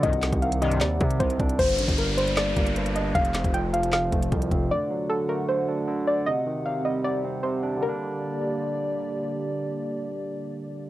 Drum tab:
HH |xxxxxxxxx-xxxxxx|xxxxx-xxx-xxxxx-|xxxxx-xxx-xxxxx-|----------------|
CP |--x-----x-------|--------x-------|--x-----x-------|----------------|
SD |--o-----o-------|--------o-------|--o-----o-------|----------------|
BD |o--o------o-o-o-|o--o------o-----|o--o------o-o-o-|----------------|

HH |----------------|----------------|----------------|
CP |----------------|----------------|----------------|
SD |----------------|----------------|----------------|
BD |----------------|----------------|----------------|